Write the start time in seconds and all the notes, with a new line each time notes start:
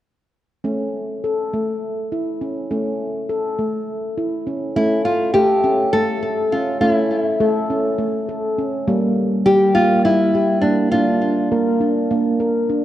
0.64 A3 C#4
1.24 A4
1.53 A3
2.12 E4
2.41 C#4
2.71 A3 C#4
3.29 A4
3.59 A3
4.17 E4
4.47 C#4
4.76 A3 C#4 E4
5.05 F4
5.34 A3 G4 A4
5.64 C#4
5.93 A3 A4
6.23 A4
6.52 C#4 F4
6.81 A3 C#4 E4
7.40 A3 A4
7.70 C#4
7.98 A3
8.29 A4
8.58 C#4
8.87 G3 A#3
9.46 G3 G4
9.75 A#3 F4
10.05 G3 E4
10.35 G4
10.61 A#3 D4
10.92 A#3 D4 F4
11.52 A#3 A#4
11.81 D4
12.11 A#3
12.40 A#4
12.69 D4